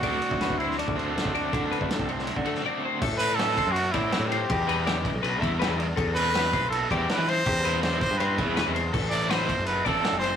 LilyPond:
<<
  \new Staff \with { instrumentName = "Clean electric guitar" } { \time 4/4 \key a \dorian \tempo 4 = 162 d''4 b'8 c''8 d''8 c''8 a'8 d''8~ | d''8 b'8 a'8 c''4 a'8 d''8 c''8 | a'4 b'8 c''8 a'8 d''4 c''8 | g'8 b'8 d''4 b'8 e''8 b'8 d''8 |
a'4 b'8 c''8 b'8 d''4 c''8 | g'8 b'8 d''4 c''8 e''8 b'8 c''8 | a'4 b'8 c''8 a'8 d''4 c''8 | }
  \new Staff \with { instrumentName = "Trumpet" } { \time 4/4 \key a \dorian fis'4. e'8 d'2~ | d'2. r4 | r8 b'8 a'4 fis'8 e'4 g'8~ | g'4. r2 r8 |
r8 b'4. a'8 g'8 b'8 c''8~ | c''4 c''8 c''8 b'4. r8 | r8 d''8 c''4 b'8 a'4 c''8 | }
  \new Staff \with { instrumentName = "Clean electric guitar" } { \time 4/4 \key a \dorian << { r8 c'4 c'8 fis'4 c'8 fis'8 | r8 c'4 c'8 e'16 fis'8. c'8 fis'8 | r1 | r1 |
r1 | r1 | r1 | } \\ { d4 a4. a4. | d4 a4. a4. | r1 | r1 |
r1 | r1 | r1 | } >> }
  \new Staff \with { instrumentName = "Overdriven electric guitar" } { \time 4/4 \key a \dorian <d a c' fis'>2~ <d a c' fis'>8 <d a c' fis'>8 <d a c' fis'>4 | <d a c' fis'>2~ <d a c' fis'>8 <d a c' fis'>8 <d a c' fis'>4 | r8 <e a c' e'>8 <e a c' e'>8 r4 <e a c' e'>8 <e a c' e'>8 r8 | r8 <e g b e'>8 <e g b e'>8 r4 <e g b e'>8 <e g b e'>8 r8 |
r8 <e g c' e'>8 <e g c' e'>8 r4 <e g c' e'>8 <e g c' e'>8 r8 | r8 <e g c' e'>8 <e g c' e'>8 r4 <e g c' e'>8 <e g c' e'>8 r8 | r8 <e a c' e'>8 <e a c' e'>8 r4 <e a c' e'>8 <e a c' e'>8 r8 | }
  \new Staff \with { instrumentName = "Picked electric bass" } { \clef bass \time 4/4 \key a \dorian d,8 r16 d,8 d,4 d,4 d,8. | d8. d,16 r16 c,4 d8. r4 | a,4.~ a,16 fis,8. a,8 r16 a,8. | e,4.~ e,16 b,,16 b,,8 e,8. e,8. |
e,4.~ e,16 b,,8. e,8 r16 e8. | e,4.~ e,16 g,16 g,8 e,8. e,8. | a,,4.~ a,,16 fis,,8. a,,8 r16 fis,,8. | }
  \new DrumStaff \with { instrumentName = "Drums" } \drummode { \time 4/4 <bd cymr>8 cymr16 bd16 <cymr sn>16 bd16 cymr16 sn16 cymr16 bd16 cymr8 <cymr sn>16 bd16 cymr8 | <bd cymr>8 cymr16 bd16 <cymr sn>16 bd16 cymr16 sn16 cymr16 bd16 cymr16 sn16 r4 | <cymc bd>8 cymr8 <cymr sn>8 <bd cymr>8 cymr8 <bd cymr>8 <cymr sn>8 cymr8 | <bd cymr>8 cymr8 <cymr sn>8 <bd cymr>8 cymr8 <bd cymr>8 <cymr sn>8 cymr8 |
<bd cymr>8 cymr8 <cymr sn>8 <bd cymr>8 cymr8 <bd cymr>8 <cymr sn>8 cymr8 | <bd cymr>8 cymr8 <cymr sn>8 <bd cymr>8 cymr8 <bd cymr>8 <cymr sn>8 cymr8 | <cymc bd>8 cymr8 <cymr sn>8 <bd cymr>8 cymr8 <bd cymr>8 <cymr sn>8 cymr8 | }
>>